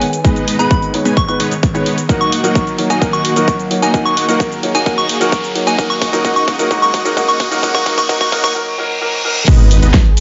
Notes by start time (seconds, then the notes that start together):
Already playing: D#3 G#3 B3 G#4 G#5, riser
0.02 open hi-hat
0.13 closed hi-hat, shaker
0.24 G#3 B3 D#4 B4 D#5, kick, closed hi-hat, shaker
0.36 closed hi-hat, shaker
0.48 open hi-hat
0.59 G#3 B3 D#4 B4 D#5 B5, closed hi-hat, shaker
0.71 kick, closed hi-hat, shaker
0.82 closed hi-hat, shaker
0.93 G#3 B3 D#4 C#5, open hi-hat
1.05 G#3 B3 D#4 B4 G#5, closed hi-hat, shaker
1.17 C#6, kick, closed hi-hat, shaker
1.28 G#3 B3 D#4 B4 C#6, closed hi-hat, shaker
1.40 G#3 B3 D#4 B4 C#5, open hi-hat
1.51 closed hi-hat, shaker
1.63 kick, closed hi-hat, shaker
1.74 G#3 B3 D#4 B4 C#5, closed hi-hat, shaker
1.86 open hi-hat
1.98 closed hi-hat, shaker
2.09 F#3 A#3 D#4 F#4 A#4 D#5 F#5, kick, closed hi-hat, shaker
2.21 C#6, closed hi-hat, shaker
2.32 open hi-hat
2.43 F#3 A#3 D#4 F#4 A#4 D#5 F#5, closed hi-hat, shaker
2.55 kick, closed hi-hat, shaker
2.67 closed hi-hat, shaker
2.78 F#3 A#3 D#4 C#5, open hi-hat
2.90 A#3 D#4 F#4 D#5 G#5 A#5, closed hi-hat, shaker
3.01 F#3 A#3 D#4 F#4 A#4 D#5 F#5, kick, closed hi-hat, shaker
3.13 C#6, closed hi-hat, shaker
3.25 open hi-hat
3.36 F#3 A#3 D#4 F#4 A#4 D#5 F#5, closed hi-hat, shaker
3.48 kick, closed hi-hat, shaker
3.59 closed hi-hat, shaker
3.70 F#3 A#3 D#4 C#5, open hi-hat
3.82 A#3 D#4 F#4 D#5 G#5 A#5, closed hi-hat, shaker
3.93 F#3 A#3 D#4 F#4 G#4 A#4 F#5, kick, closed hi-hat, shaker
4.06 C#6, closed hi-hat, shaker
4.17 open hi-hat
4.28 F#3 A#3 D#4 F#4 A#4 D#5 F#5, closed hi-hat, shaker
4.40 kick, closed hi-hat, shaker
4.52 closed hi-hat, shaker
4.63 F#3 A#3 D#4 C#5, open hi-hat
4.75 A#3 D#4 F#4 D#5 G#5 A#5, closed hi-hat, shaker
4.86 F#3 A#3 D#4 F#4 A#4 D#5 F#5, kick, closed hi-hat, shaker
4.98 C#6, closed hi-hat, shaker
5.09 open hi-hat
5.20 F#3 A#3 D#4 F#4 A#4 D#5 F#5, closed hi-hat, shaker
5.32 kick, closed hi-hat, shaker
5.44 closed hi-hat, shaker
5.55 F#3 A#3 D#4 C#5, open hi-hat
5.67 A#3 D#4 F#4 D#5 G#5 A#5, closed hi-hat, shaker
5.78 C#3 F#3 G#3 A#3 D#4 F#4 A#4 D#5 F#5, kick, closed hi-hat, shaker
5.90 C#6, closed hi-hat, shaker
6.02 kick, open hi-hat
6.12 F#3 A#3 D#4 F#4 A#4 D#5 F#5, closed hi-hat, shaker
6.24 F#3 A#3 D#4 F#4 A#4 D#5 F#5, kick, closed hi-hat, shaker
6.36 C#6, closed hi-hat, shaker
6.48 kick, open hi-hat
6.58 F#3 A#3 D#4 F#4 A#4 D#5 F#5, closed hi-hat, shaker
6.70 F#3 A#3 D#4 F#4 A#4 D#5 F#5, kick, closed hi-hat, shaker
6.82 C#6, closed hi-hat, shaker
6.94 kick, open hi-hat
7.05 F#3 A#3 D#4 F#4 A#4 D#5 F#5, closed hi-hat, shaker
7.16 F#3 A#3 D#4 F#4 A#4 D#5 F#5, kick, closed hi-hat, shaker
7.28 C#6, closed hi-hat, shaker
7.40 kick, open hi-hat
7.51 F#3 A#3 D#4 F#4 A#4 D#5 F#5, closed hi-hat, shaker
7.62 F#3 A#3 D#4 F#4 A#4 D#5 F#5, kick, closed hi-hat, shaker
7.75 C#6, kick, closed hi-hat, shaker
7.86 F#3 A#3 D#4 F#4 A#4 D#5 F#5, kick, open hi-hat
7.98 C#6, kick, closed hi-hat, shaker
8.09 F#3 A#3 D#4 F#4 A#4 D#5 F#5, kick, closed hi-hat, shaker
8.21 C#6, kick, closed hi-hat, shaker
8.32 F#3 A#3 D#4 F#4 A#4 D#5 F#5, kick, open hi-hat
8.44 C#6, kick, closed hi-hat, shaker
8.55 F#3 A#3 D#4 A#4, reverse cymbal
8.78 F#3 A#3 D#4 A#4
9.01 F#3 A#3 D#4 A#4
9.24 F#3 A#3 D#4 A#4
9.48 G#1 D#3 G#3 B3 D#4 G#4 B4 D#5, kick, closed hi-hat, crash, sub drop, shaker
9.59 closed hi-hat
9.71 open hi-hat, shaker
9.82 G#1 G#3 B3 D#4 B4 D#5, closed hi-hat, shaker
9.94 kick, snare, closed hi-hat, shaker
10.06 closed hi-hat
10.17 open hi-hat